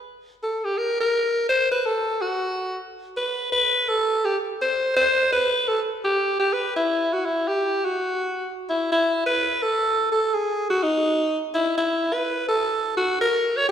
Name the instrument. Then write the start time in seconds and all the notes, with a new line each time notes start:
alto saxophone
0.43 A4
0.64 G4
0.78 A#4
1.00 A#4
1.49 C5
1.72 B4
1.86 A4
2.21 F#4
3.17 B4
3.52 B4
3.88 A4
4.25 G4
4.62 C5
4.96 C5
5.33 B4
5.68 A4
6.04 G4
6.40 G4
6.53 B4
6.76 E4
7.13 F#4
7.25 E4
7.48 G4
7.85 F#4
8.69 E4
8.92 E4
9.26 B4
9.63 A4
10.12 A4
10.34 G#4
10.70 F#4
10.83 D#4
11.54 E4
11.78 E4
12.13 B4
12.48 A4
12.97 F#4
13.21 A#4
13.57 C#5